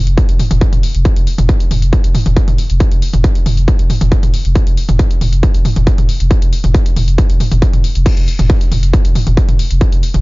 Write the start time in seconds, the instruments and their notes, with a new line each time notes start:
0.07 sub bass F1, closed hi-hat
0.18 kick, closed hi-hat
0.29 sub bass F1, closed hi-hat
0.39 mid tom, open hi-hat
0.51 sub bass F1, closed hi-hat, mid tom
0.61 kick, closed hi-hat
0.73 sub bass F1, closed hi-hat, mid tom
0.83 open hi-hat
0.95 sub bass F1, closed hi-hat
1.05 kick, closed hi-hat
1.16 sub bass F1, closed hi-hat
1.27 open hi-hat
1.38 sub bass F1, closed hi-hat, mid tom
1.49 kick, closed hi-hat
1.60 closed hi-hat
1.71 sub bass F1, mid tom, open hi-hat
1.82 sub bass F1, closed hi-hat
1.93 kick, closed hi-hat
2.04 sub bass F1, closed hi-hat
2.15 mid tom, open hi-hat
2.26 sub bass F1, closed hi-hat, mid tom
2.37 kick, closed hi-hat
2.48 sub bass F1, closed hi-hat, mid tom
2.58 open hi-hat
2.70 sub bass F1, closed hi-hat
2.80 kick, closed hi-hat
2.92 sub bass F1, closed hi-hat
3.02 open hi-hat
3.14 sub bass F1, closed hi-hat, mid tom
3.24 kick, closed hi-hat
3.35 closed hi-hat
3.46 sub bass F1, mid tom, open hi-hat
3.57 sub bass F1, closed hi-hat
3.68 kick, closed hi-hat
3.79 sub bass F1, closed hi-hat
3.90 mid tom, open hi-hat
4.01 sub bass F1, closed hi-hat, mid tom
4.12 kick, closed hi-hat
4.23 sub bass F1, closed hi-hat, mid tom
4.34 open hi-hat
4.45 sub bass F1, closed hi-hat
4.56 kick, closed hi-hat
4.67 sub bass F1, closed hi-hat
4.77 open hi-hat
4.89 sub bass F1, closed hi-hat, mid tom
4.99 kick, closed hi-hat
5.11 closed hi-hat
5.21 sub bass F1, mid tom, open hi-hat
5.32 sub bass F1, closed hi-hat
5.43 kick, closed hi-hat
5.54 sub bass F1, closed hi-hat
5.65 mid tom, open hi-hat
5.76 sub bass F1, closed hi-hat, mid tom
5.87 kick, closed hi-hat
5.98 sub bass F1, closed hi-hat, mid tom
6.09 open hi-hat
6.20 sub bass F1, closed hi-hat
6.31 kick, closed hi-hat
6.42 sub bass F1, closed hi-hat
6.53 open hi-hat
6.64 sub bass F1, closed hi-hat, mid tom
6.75 kick, closed hi-hat
6.86 closed hi-hat
6.96 sub bass F1, mid tom, open hi-hat
7.08 sub bass F1, closed hi-hat
7.18 kick, closed hi-hat
7.30 sub bass F1, closed hi-hat
7.40 mid tom, open hi-hat
7.51 sub bass F1, closed hi-hat, mid tom
7.62 kick, closed hi-hat
7.73 sub bass F1, closed hi-hat, mid tom
7.84 open hi-hat
7.95 sub bass F1, closed hi-hat
8.06 kick, closed hi-hat, crash
8.17 sub bass F1, closed hi-hat
8.28 open hi-hat
8.39 sub bass F1, closed hi-hat, mid tom
8.50 kick, closed hi-hat
8.61 closed hi-hat
8.72 sub bass F1, mid tom, open hi-hat
8.83 sub bass F1, closed hi-hat
8.94 kick, closed hi-hat
9.05 sub bass F1, closed hi-hat
9.15 mid tom, open hi-hat
9.27 sub bass F1, closed hi-hat, mid tom
9.37 kick, closed hi-hat
9.49 sub bass F1, closed hi-hat, mid tom
9.59 open hi-hat
9.71 sub bass F1, closed hi-hat
9.81 kick, closed hi-hat
9.92 sub bass F1, closed hi-hat
10.03 open hi-hat
10.14 sub bass F1, closed hi-hat, mid tom